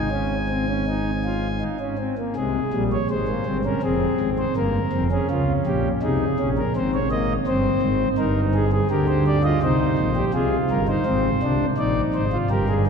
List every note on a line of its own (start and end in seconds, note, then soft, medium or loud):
0.00 1.63 G#1 medium
0.00 1.63 G#2 medium
0.00 1.63 G#5 medium
0.11 0.35 C#4 medium
0.50 0.66 C4 medium
0.68 0.85 C#4 medium
0.87 1.10 D#4 medium
1.25 1.48 F4 medium
1.61 1.78 D#4 medium
1.80 1.96 C#4 medium
1.99 2.15 C4 medium
2.18 2.34 A#3 medium
2.36 2.59 C2 medium
2.36 2.59 C3 medium
2.36 2.59 G#3 medium
2.36 2.83 G#4 medium
2.73 2.96 A#1 medium
2.73 2.96 A#2 medium
2.73 2.96 G3 medium
2.92 3.07 C#5 medium
3.10 3.33 G#1 medium
3.10 3.33 G#2 medium
3.10 3.26 G#3 medium
3.10 3.57 C5 medium
3.28 3.44 A#3 medium
3.46 3.69 G1 medium
3.46 3.69 G2 medium
3.46 3.62 C4 medium
3.65 3.80 C#4 medium
3.65 3.81 A#4 medium
3.82 4.06 F1 medium
3.82 4.05 F2 medium
3.82 4.46 C4 medium
3.82 4.30 G#4 medium
4.20 4.43 G#1 medium
4.20 4.42 G#2 medium
4.38 4.54 C5 medium
4.56 4.79 G1 medium
4.56 4.79 G2 medium
4.56 4.79 A#3 medium
4.56 5.03 A#4 medium
4.93 5.15 F1 medium
4.93 5.15 F2 medium
4.93 5.08 C4 medium
5.12 5.90 C#4 medium
5.12 5.27 G#4 medium
5.30 5.52 C#2 medium
5.30 5.53 C#3 medium
5.30 5.53 F4 medium
5.66 5.89 A#1 medium
5.66 5.89 A#2 medium
5.66 5.89 G4 medium
6.02 6.25 C2 medium
6.02 6.25 C3 medium
6.02 6.25 D#4 medium
6.02 6.49 G#4 medium
6.39 6.61 A#1 medium
6.39 6.61 A#2 medium
6.39 6.61 C#4 medium
6.57 6.72 A#4 medium
6.76 7.37 G#1 medium
6.76 7.37 G#2 medium
6.76 6.98 C4 medium
6.76 6.91 C5 medium
6.94 7.09 C#5 medium
7.11 7.33 A#3 medium
7.11 7.33 D#5 medium
7.47 7.69 G1 medium
7.47 7.69 G2 medium
7.47 8.08 C4 medium
7.47 8.08 C5 medium
7.82 8.04 G#1 medium
7.82 8.04 G#2 medium
8.18 8.80 G1 medium
8.18 8.80 G2 medium
8.18 8.65 D#4 medium
8.18 8.40 A#4 medium
8.54 8.70 G#4 medium
8.72 8.88 G#4 loud
8.90 9.52 D2 medium
8.90 9.53 D3 medium
8.90 9.37 G4 medium
8.90 9.06 A#4 medium
9.08 9.23 C5 medium
9.26 9.42 D5 medium
9.44 9.60 F4 loud
9.44 9.59 D#5 medium
9.62 9.85 C2 medium
9.62 9.85 C3 medium
9.62 10.09 D#4 loud
9.62 10.25 C5 medium
9.98 10.21 A#1 medium
9.98 10.21 A#2 medium
10.16 10.32 G4 medium
10.34 10.56 C2 medium
10.34 10.56 C3 medium
10.34 10.81 F4 loud
10.34 10.56 G#4 medium
10.70 10.93 G1 medium
10.70 10.93 G2 medium
10.70 10.86 A#4 medium
10.88 11.04 D#4 medium
10.88 11.66 C5 medium
11.06 11.29 G#1 medium
11.06 11.29 G#2 medium
11.06 11.29 C4 loud
11.42 11.65 C2 medium
11.42 11.65 C3 medium
11.42 11.65 D4 medium
11.77 12.00 A#1 medium
11.77 12.01 A#2 medium
11.77 12.25 D#4 medium
11.77 12.01 D5 medium
12.14 12.37 G#1 medium
12.14 12.37 G#2 medium
12.14 12.37 C5 medium
12.33 12.49 F4 medium
12.50 12.90 G1 medium
12.50 12.90 G2 medium
12.50 12.67 G4 medium
12.50 12.73 A#4 medium
12.69 12.85 G#4 medium
12.87 12.90 G#4 medium
12.87 12.90 A#4 medium